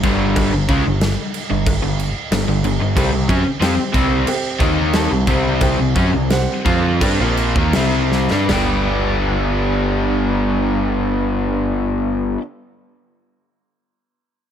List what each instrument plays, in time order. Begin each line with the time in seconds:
0.03 picked electric bass G1, overdriven electric guitar G2 D3 G3, kick, crash
0.36 kick, cowbell, crash
0.53 picked electric bass G1, overdriven electric guitar G2 D3
0.69 picked electric bass C#2, overdriven electric guitar C#3 G#3, kick, crash
0.86 picked electric bass G1, overdriven electric guitar G2 D3
1.01 snare, cowbell, crash
1.34 crash
1.50 picked electric bass G1, overdriven electric guitar G2 D3
1.67 kick, cowbell, crash
1.82 picked electric bass G1, overdriven electric guitar G2 D3
1.99 crash
2.31 picked electric bass G1, overdriven electric guitar G2 D3, snare, cowbell, crash
2.47 picked electric bass G1, overdriven electric guitar G2 D3
2.63 picked electric bass G1, overdriven electric guitar G2 D3, crash
2.81 picked electric bass G1, overdriven electric guitar G2 D3
2.96 picked electric bass C2, overdriven electric guitar C3 G3, upright piano C4 G4 C5 G5, kick, cowbell, crash
3.12 picked electric bass C2, overdriven electric guitar C3 G3
3.29 picked electric bass F#2, overdriven electric guitar F#3 C#4, kick, crash
3.45 muted picked electric bass stroke, muted overdriven electric guitar stroke
3.60 picked electric bass F2, overdriven electric guitar F3 C4, upright piano C4 G4 C5 G5, snare, cowbell, crash
3.78 muted picked electric bass stroke, muted overdriven electric guitar stroke
3.94 picked electric bass C2, overdriven electric guitar C3 G3 C4, kick, crash
4.27 upright piano C4 G4 C5 G5, muted picked electric bass stroke, muted overdriven electric guitar stroke, cowbell, crash
4.60 picked electric bass D#2, overdriven electric guitar D#3 A#3 D#4, kick, crash
4.93 upright piano C4 G4 C5 A5, snare, cowbell, crash
5.11 picked electric bass C2, overdriven electric guitar C3 G3
5.27 picked electric bass C2, overdriven electric guitar C3 G3 C4, kick, crash
5.61 upright piano C4 G4 C5 G5, kick, cowbell, crash
5.79 picked electric bass C2, overdriven electric guitar C3 G3
5.96 picked electric bass F#2, overdriven electric guitar F#3 C#4, kick, crash
6.13 picked electric bass C2, overdriven electric guitar C3 G3
6.30 upright piano C4 G4 C5 F#5, snare, cowbell, crash
6.66 picked electric bass F2, overdriven electric guitar F3 C4 F4, kick, crash
7.01 picked electric bass G2, overdriven electric guitar G3 D4, upright piano C4 G4 C5 G5, kick, cowbell, crash
7.20 picked electric bass A#1, overdriven electric guitar A#2 F3 A#3
7.37 crash
7.56 picked electric bass D#2, overdriven electric guitar D#3 A#3, kick
7.73 picked electric bass C2, overdriven electric guitar C3 G3 C4, upright piano C4 G4 C5 E5, snare, cowbell, crash
8.12 snare
8.31 picked electric bass G2, overdriven electric guitar G3 D4, snare
8.45 upright piano B4, floor tom, splash
8.49 picked electric bass G1, overdriven electric guitar G2 D3 G3 B3 G4, upright piano D5 G5, snare, cowbell
8.53 overdriven electric guitar D4